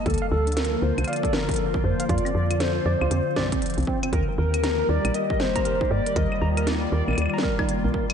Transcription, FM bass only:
X:1
M:4/4
L:1/16
Q:"Swing 16ths" 1/4=118
K:Eblyd
V:1 name="FM bass" clef=bass
D,, z D,,3 z D,, C,, z6 F,, z | F,, z F,,3 z F,, D,, F,, z4 C,, z2 | E,, z E,,3 z E,, B,,, z6 G,, z | E,, z E,,3 z E,, B,,, E,, z4 B,,, z2 |]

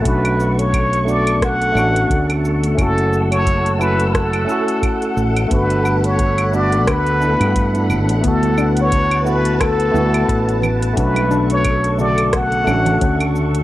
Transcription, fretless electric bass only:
X:1
M:4/4
L:1/16
Q:"Swing 16ths" 1/4=88
K:Bm
V:1 name="Fretless electric bass" clef=bass
B,,,8- B,,,2 A,,,2 D,,4 | F,,,8- F,,,2 z4 A,,,2 | G,,,8 D,,3 G,,3 G,,, A,,, | D,,8- D,,2 D,,2 A,,,4 |
B,,,8- B,,,2 A,,,2 D,,4 |]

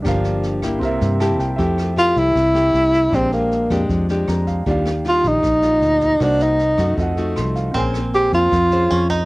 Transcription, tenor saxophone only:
X:1
M:4/4
L:1/8
Q:1/4=156
K:C
V:1 name="Tenor saxophone"
z8 | [K:F] z2 F E4- E | C B,3 z4 | z2 F _E4- E |
D _E3 z4 | z2 G F4- F |]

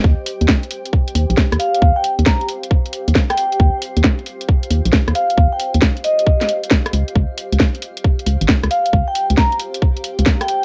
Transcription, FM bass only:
X:1
M:4/4
L:1/16
Q:"Swing 16ths" 1/4=135
K:Eb
V:1 name="FM bass" clef=bass
E,, z2 E,, z6 E,, B,,, z E,, z2 | E,, z2 E,, z6 z E,, z4 | E,, z2 E,, z6 E,, B,,, z E,, z2 | E,, z2 E,, z8 z2 _D,, z |
_D,, z2 D,, z6 D,, A,,, z D,, z2 | _D,, z2 D,, z6 z D,, z4 |]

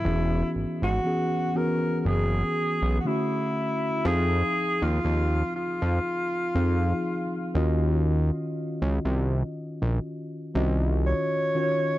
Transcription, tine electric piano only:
X:1
M:4/4
L:1/8
Q:"Swing 16ths" 1/4=60
K:Fphr
V:1 name="Tine electric piano"
[=E,=B,^C^F^G] z [E,B,CFG] [E,B,CFG]3 [=D,=A,C=EF]2 | [F,CE=GAf]3 z2 [F,CEAf] z [E,DF_Ge]- | [E,DFGe]2 z3 [E,DFGe] z [E,DFGd] |]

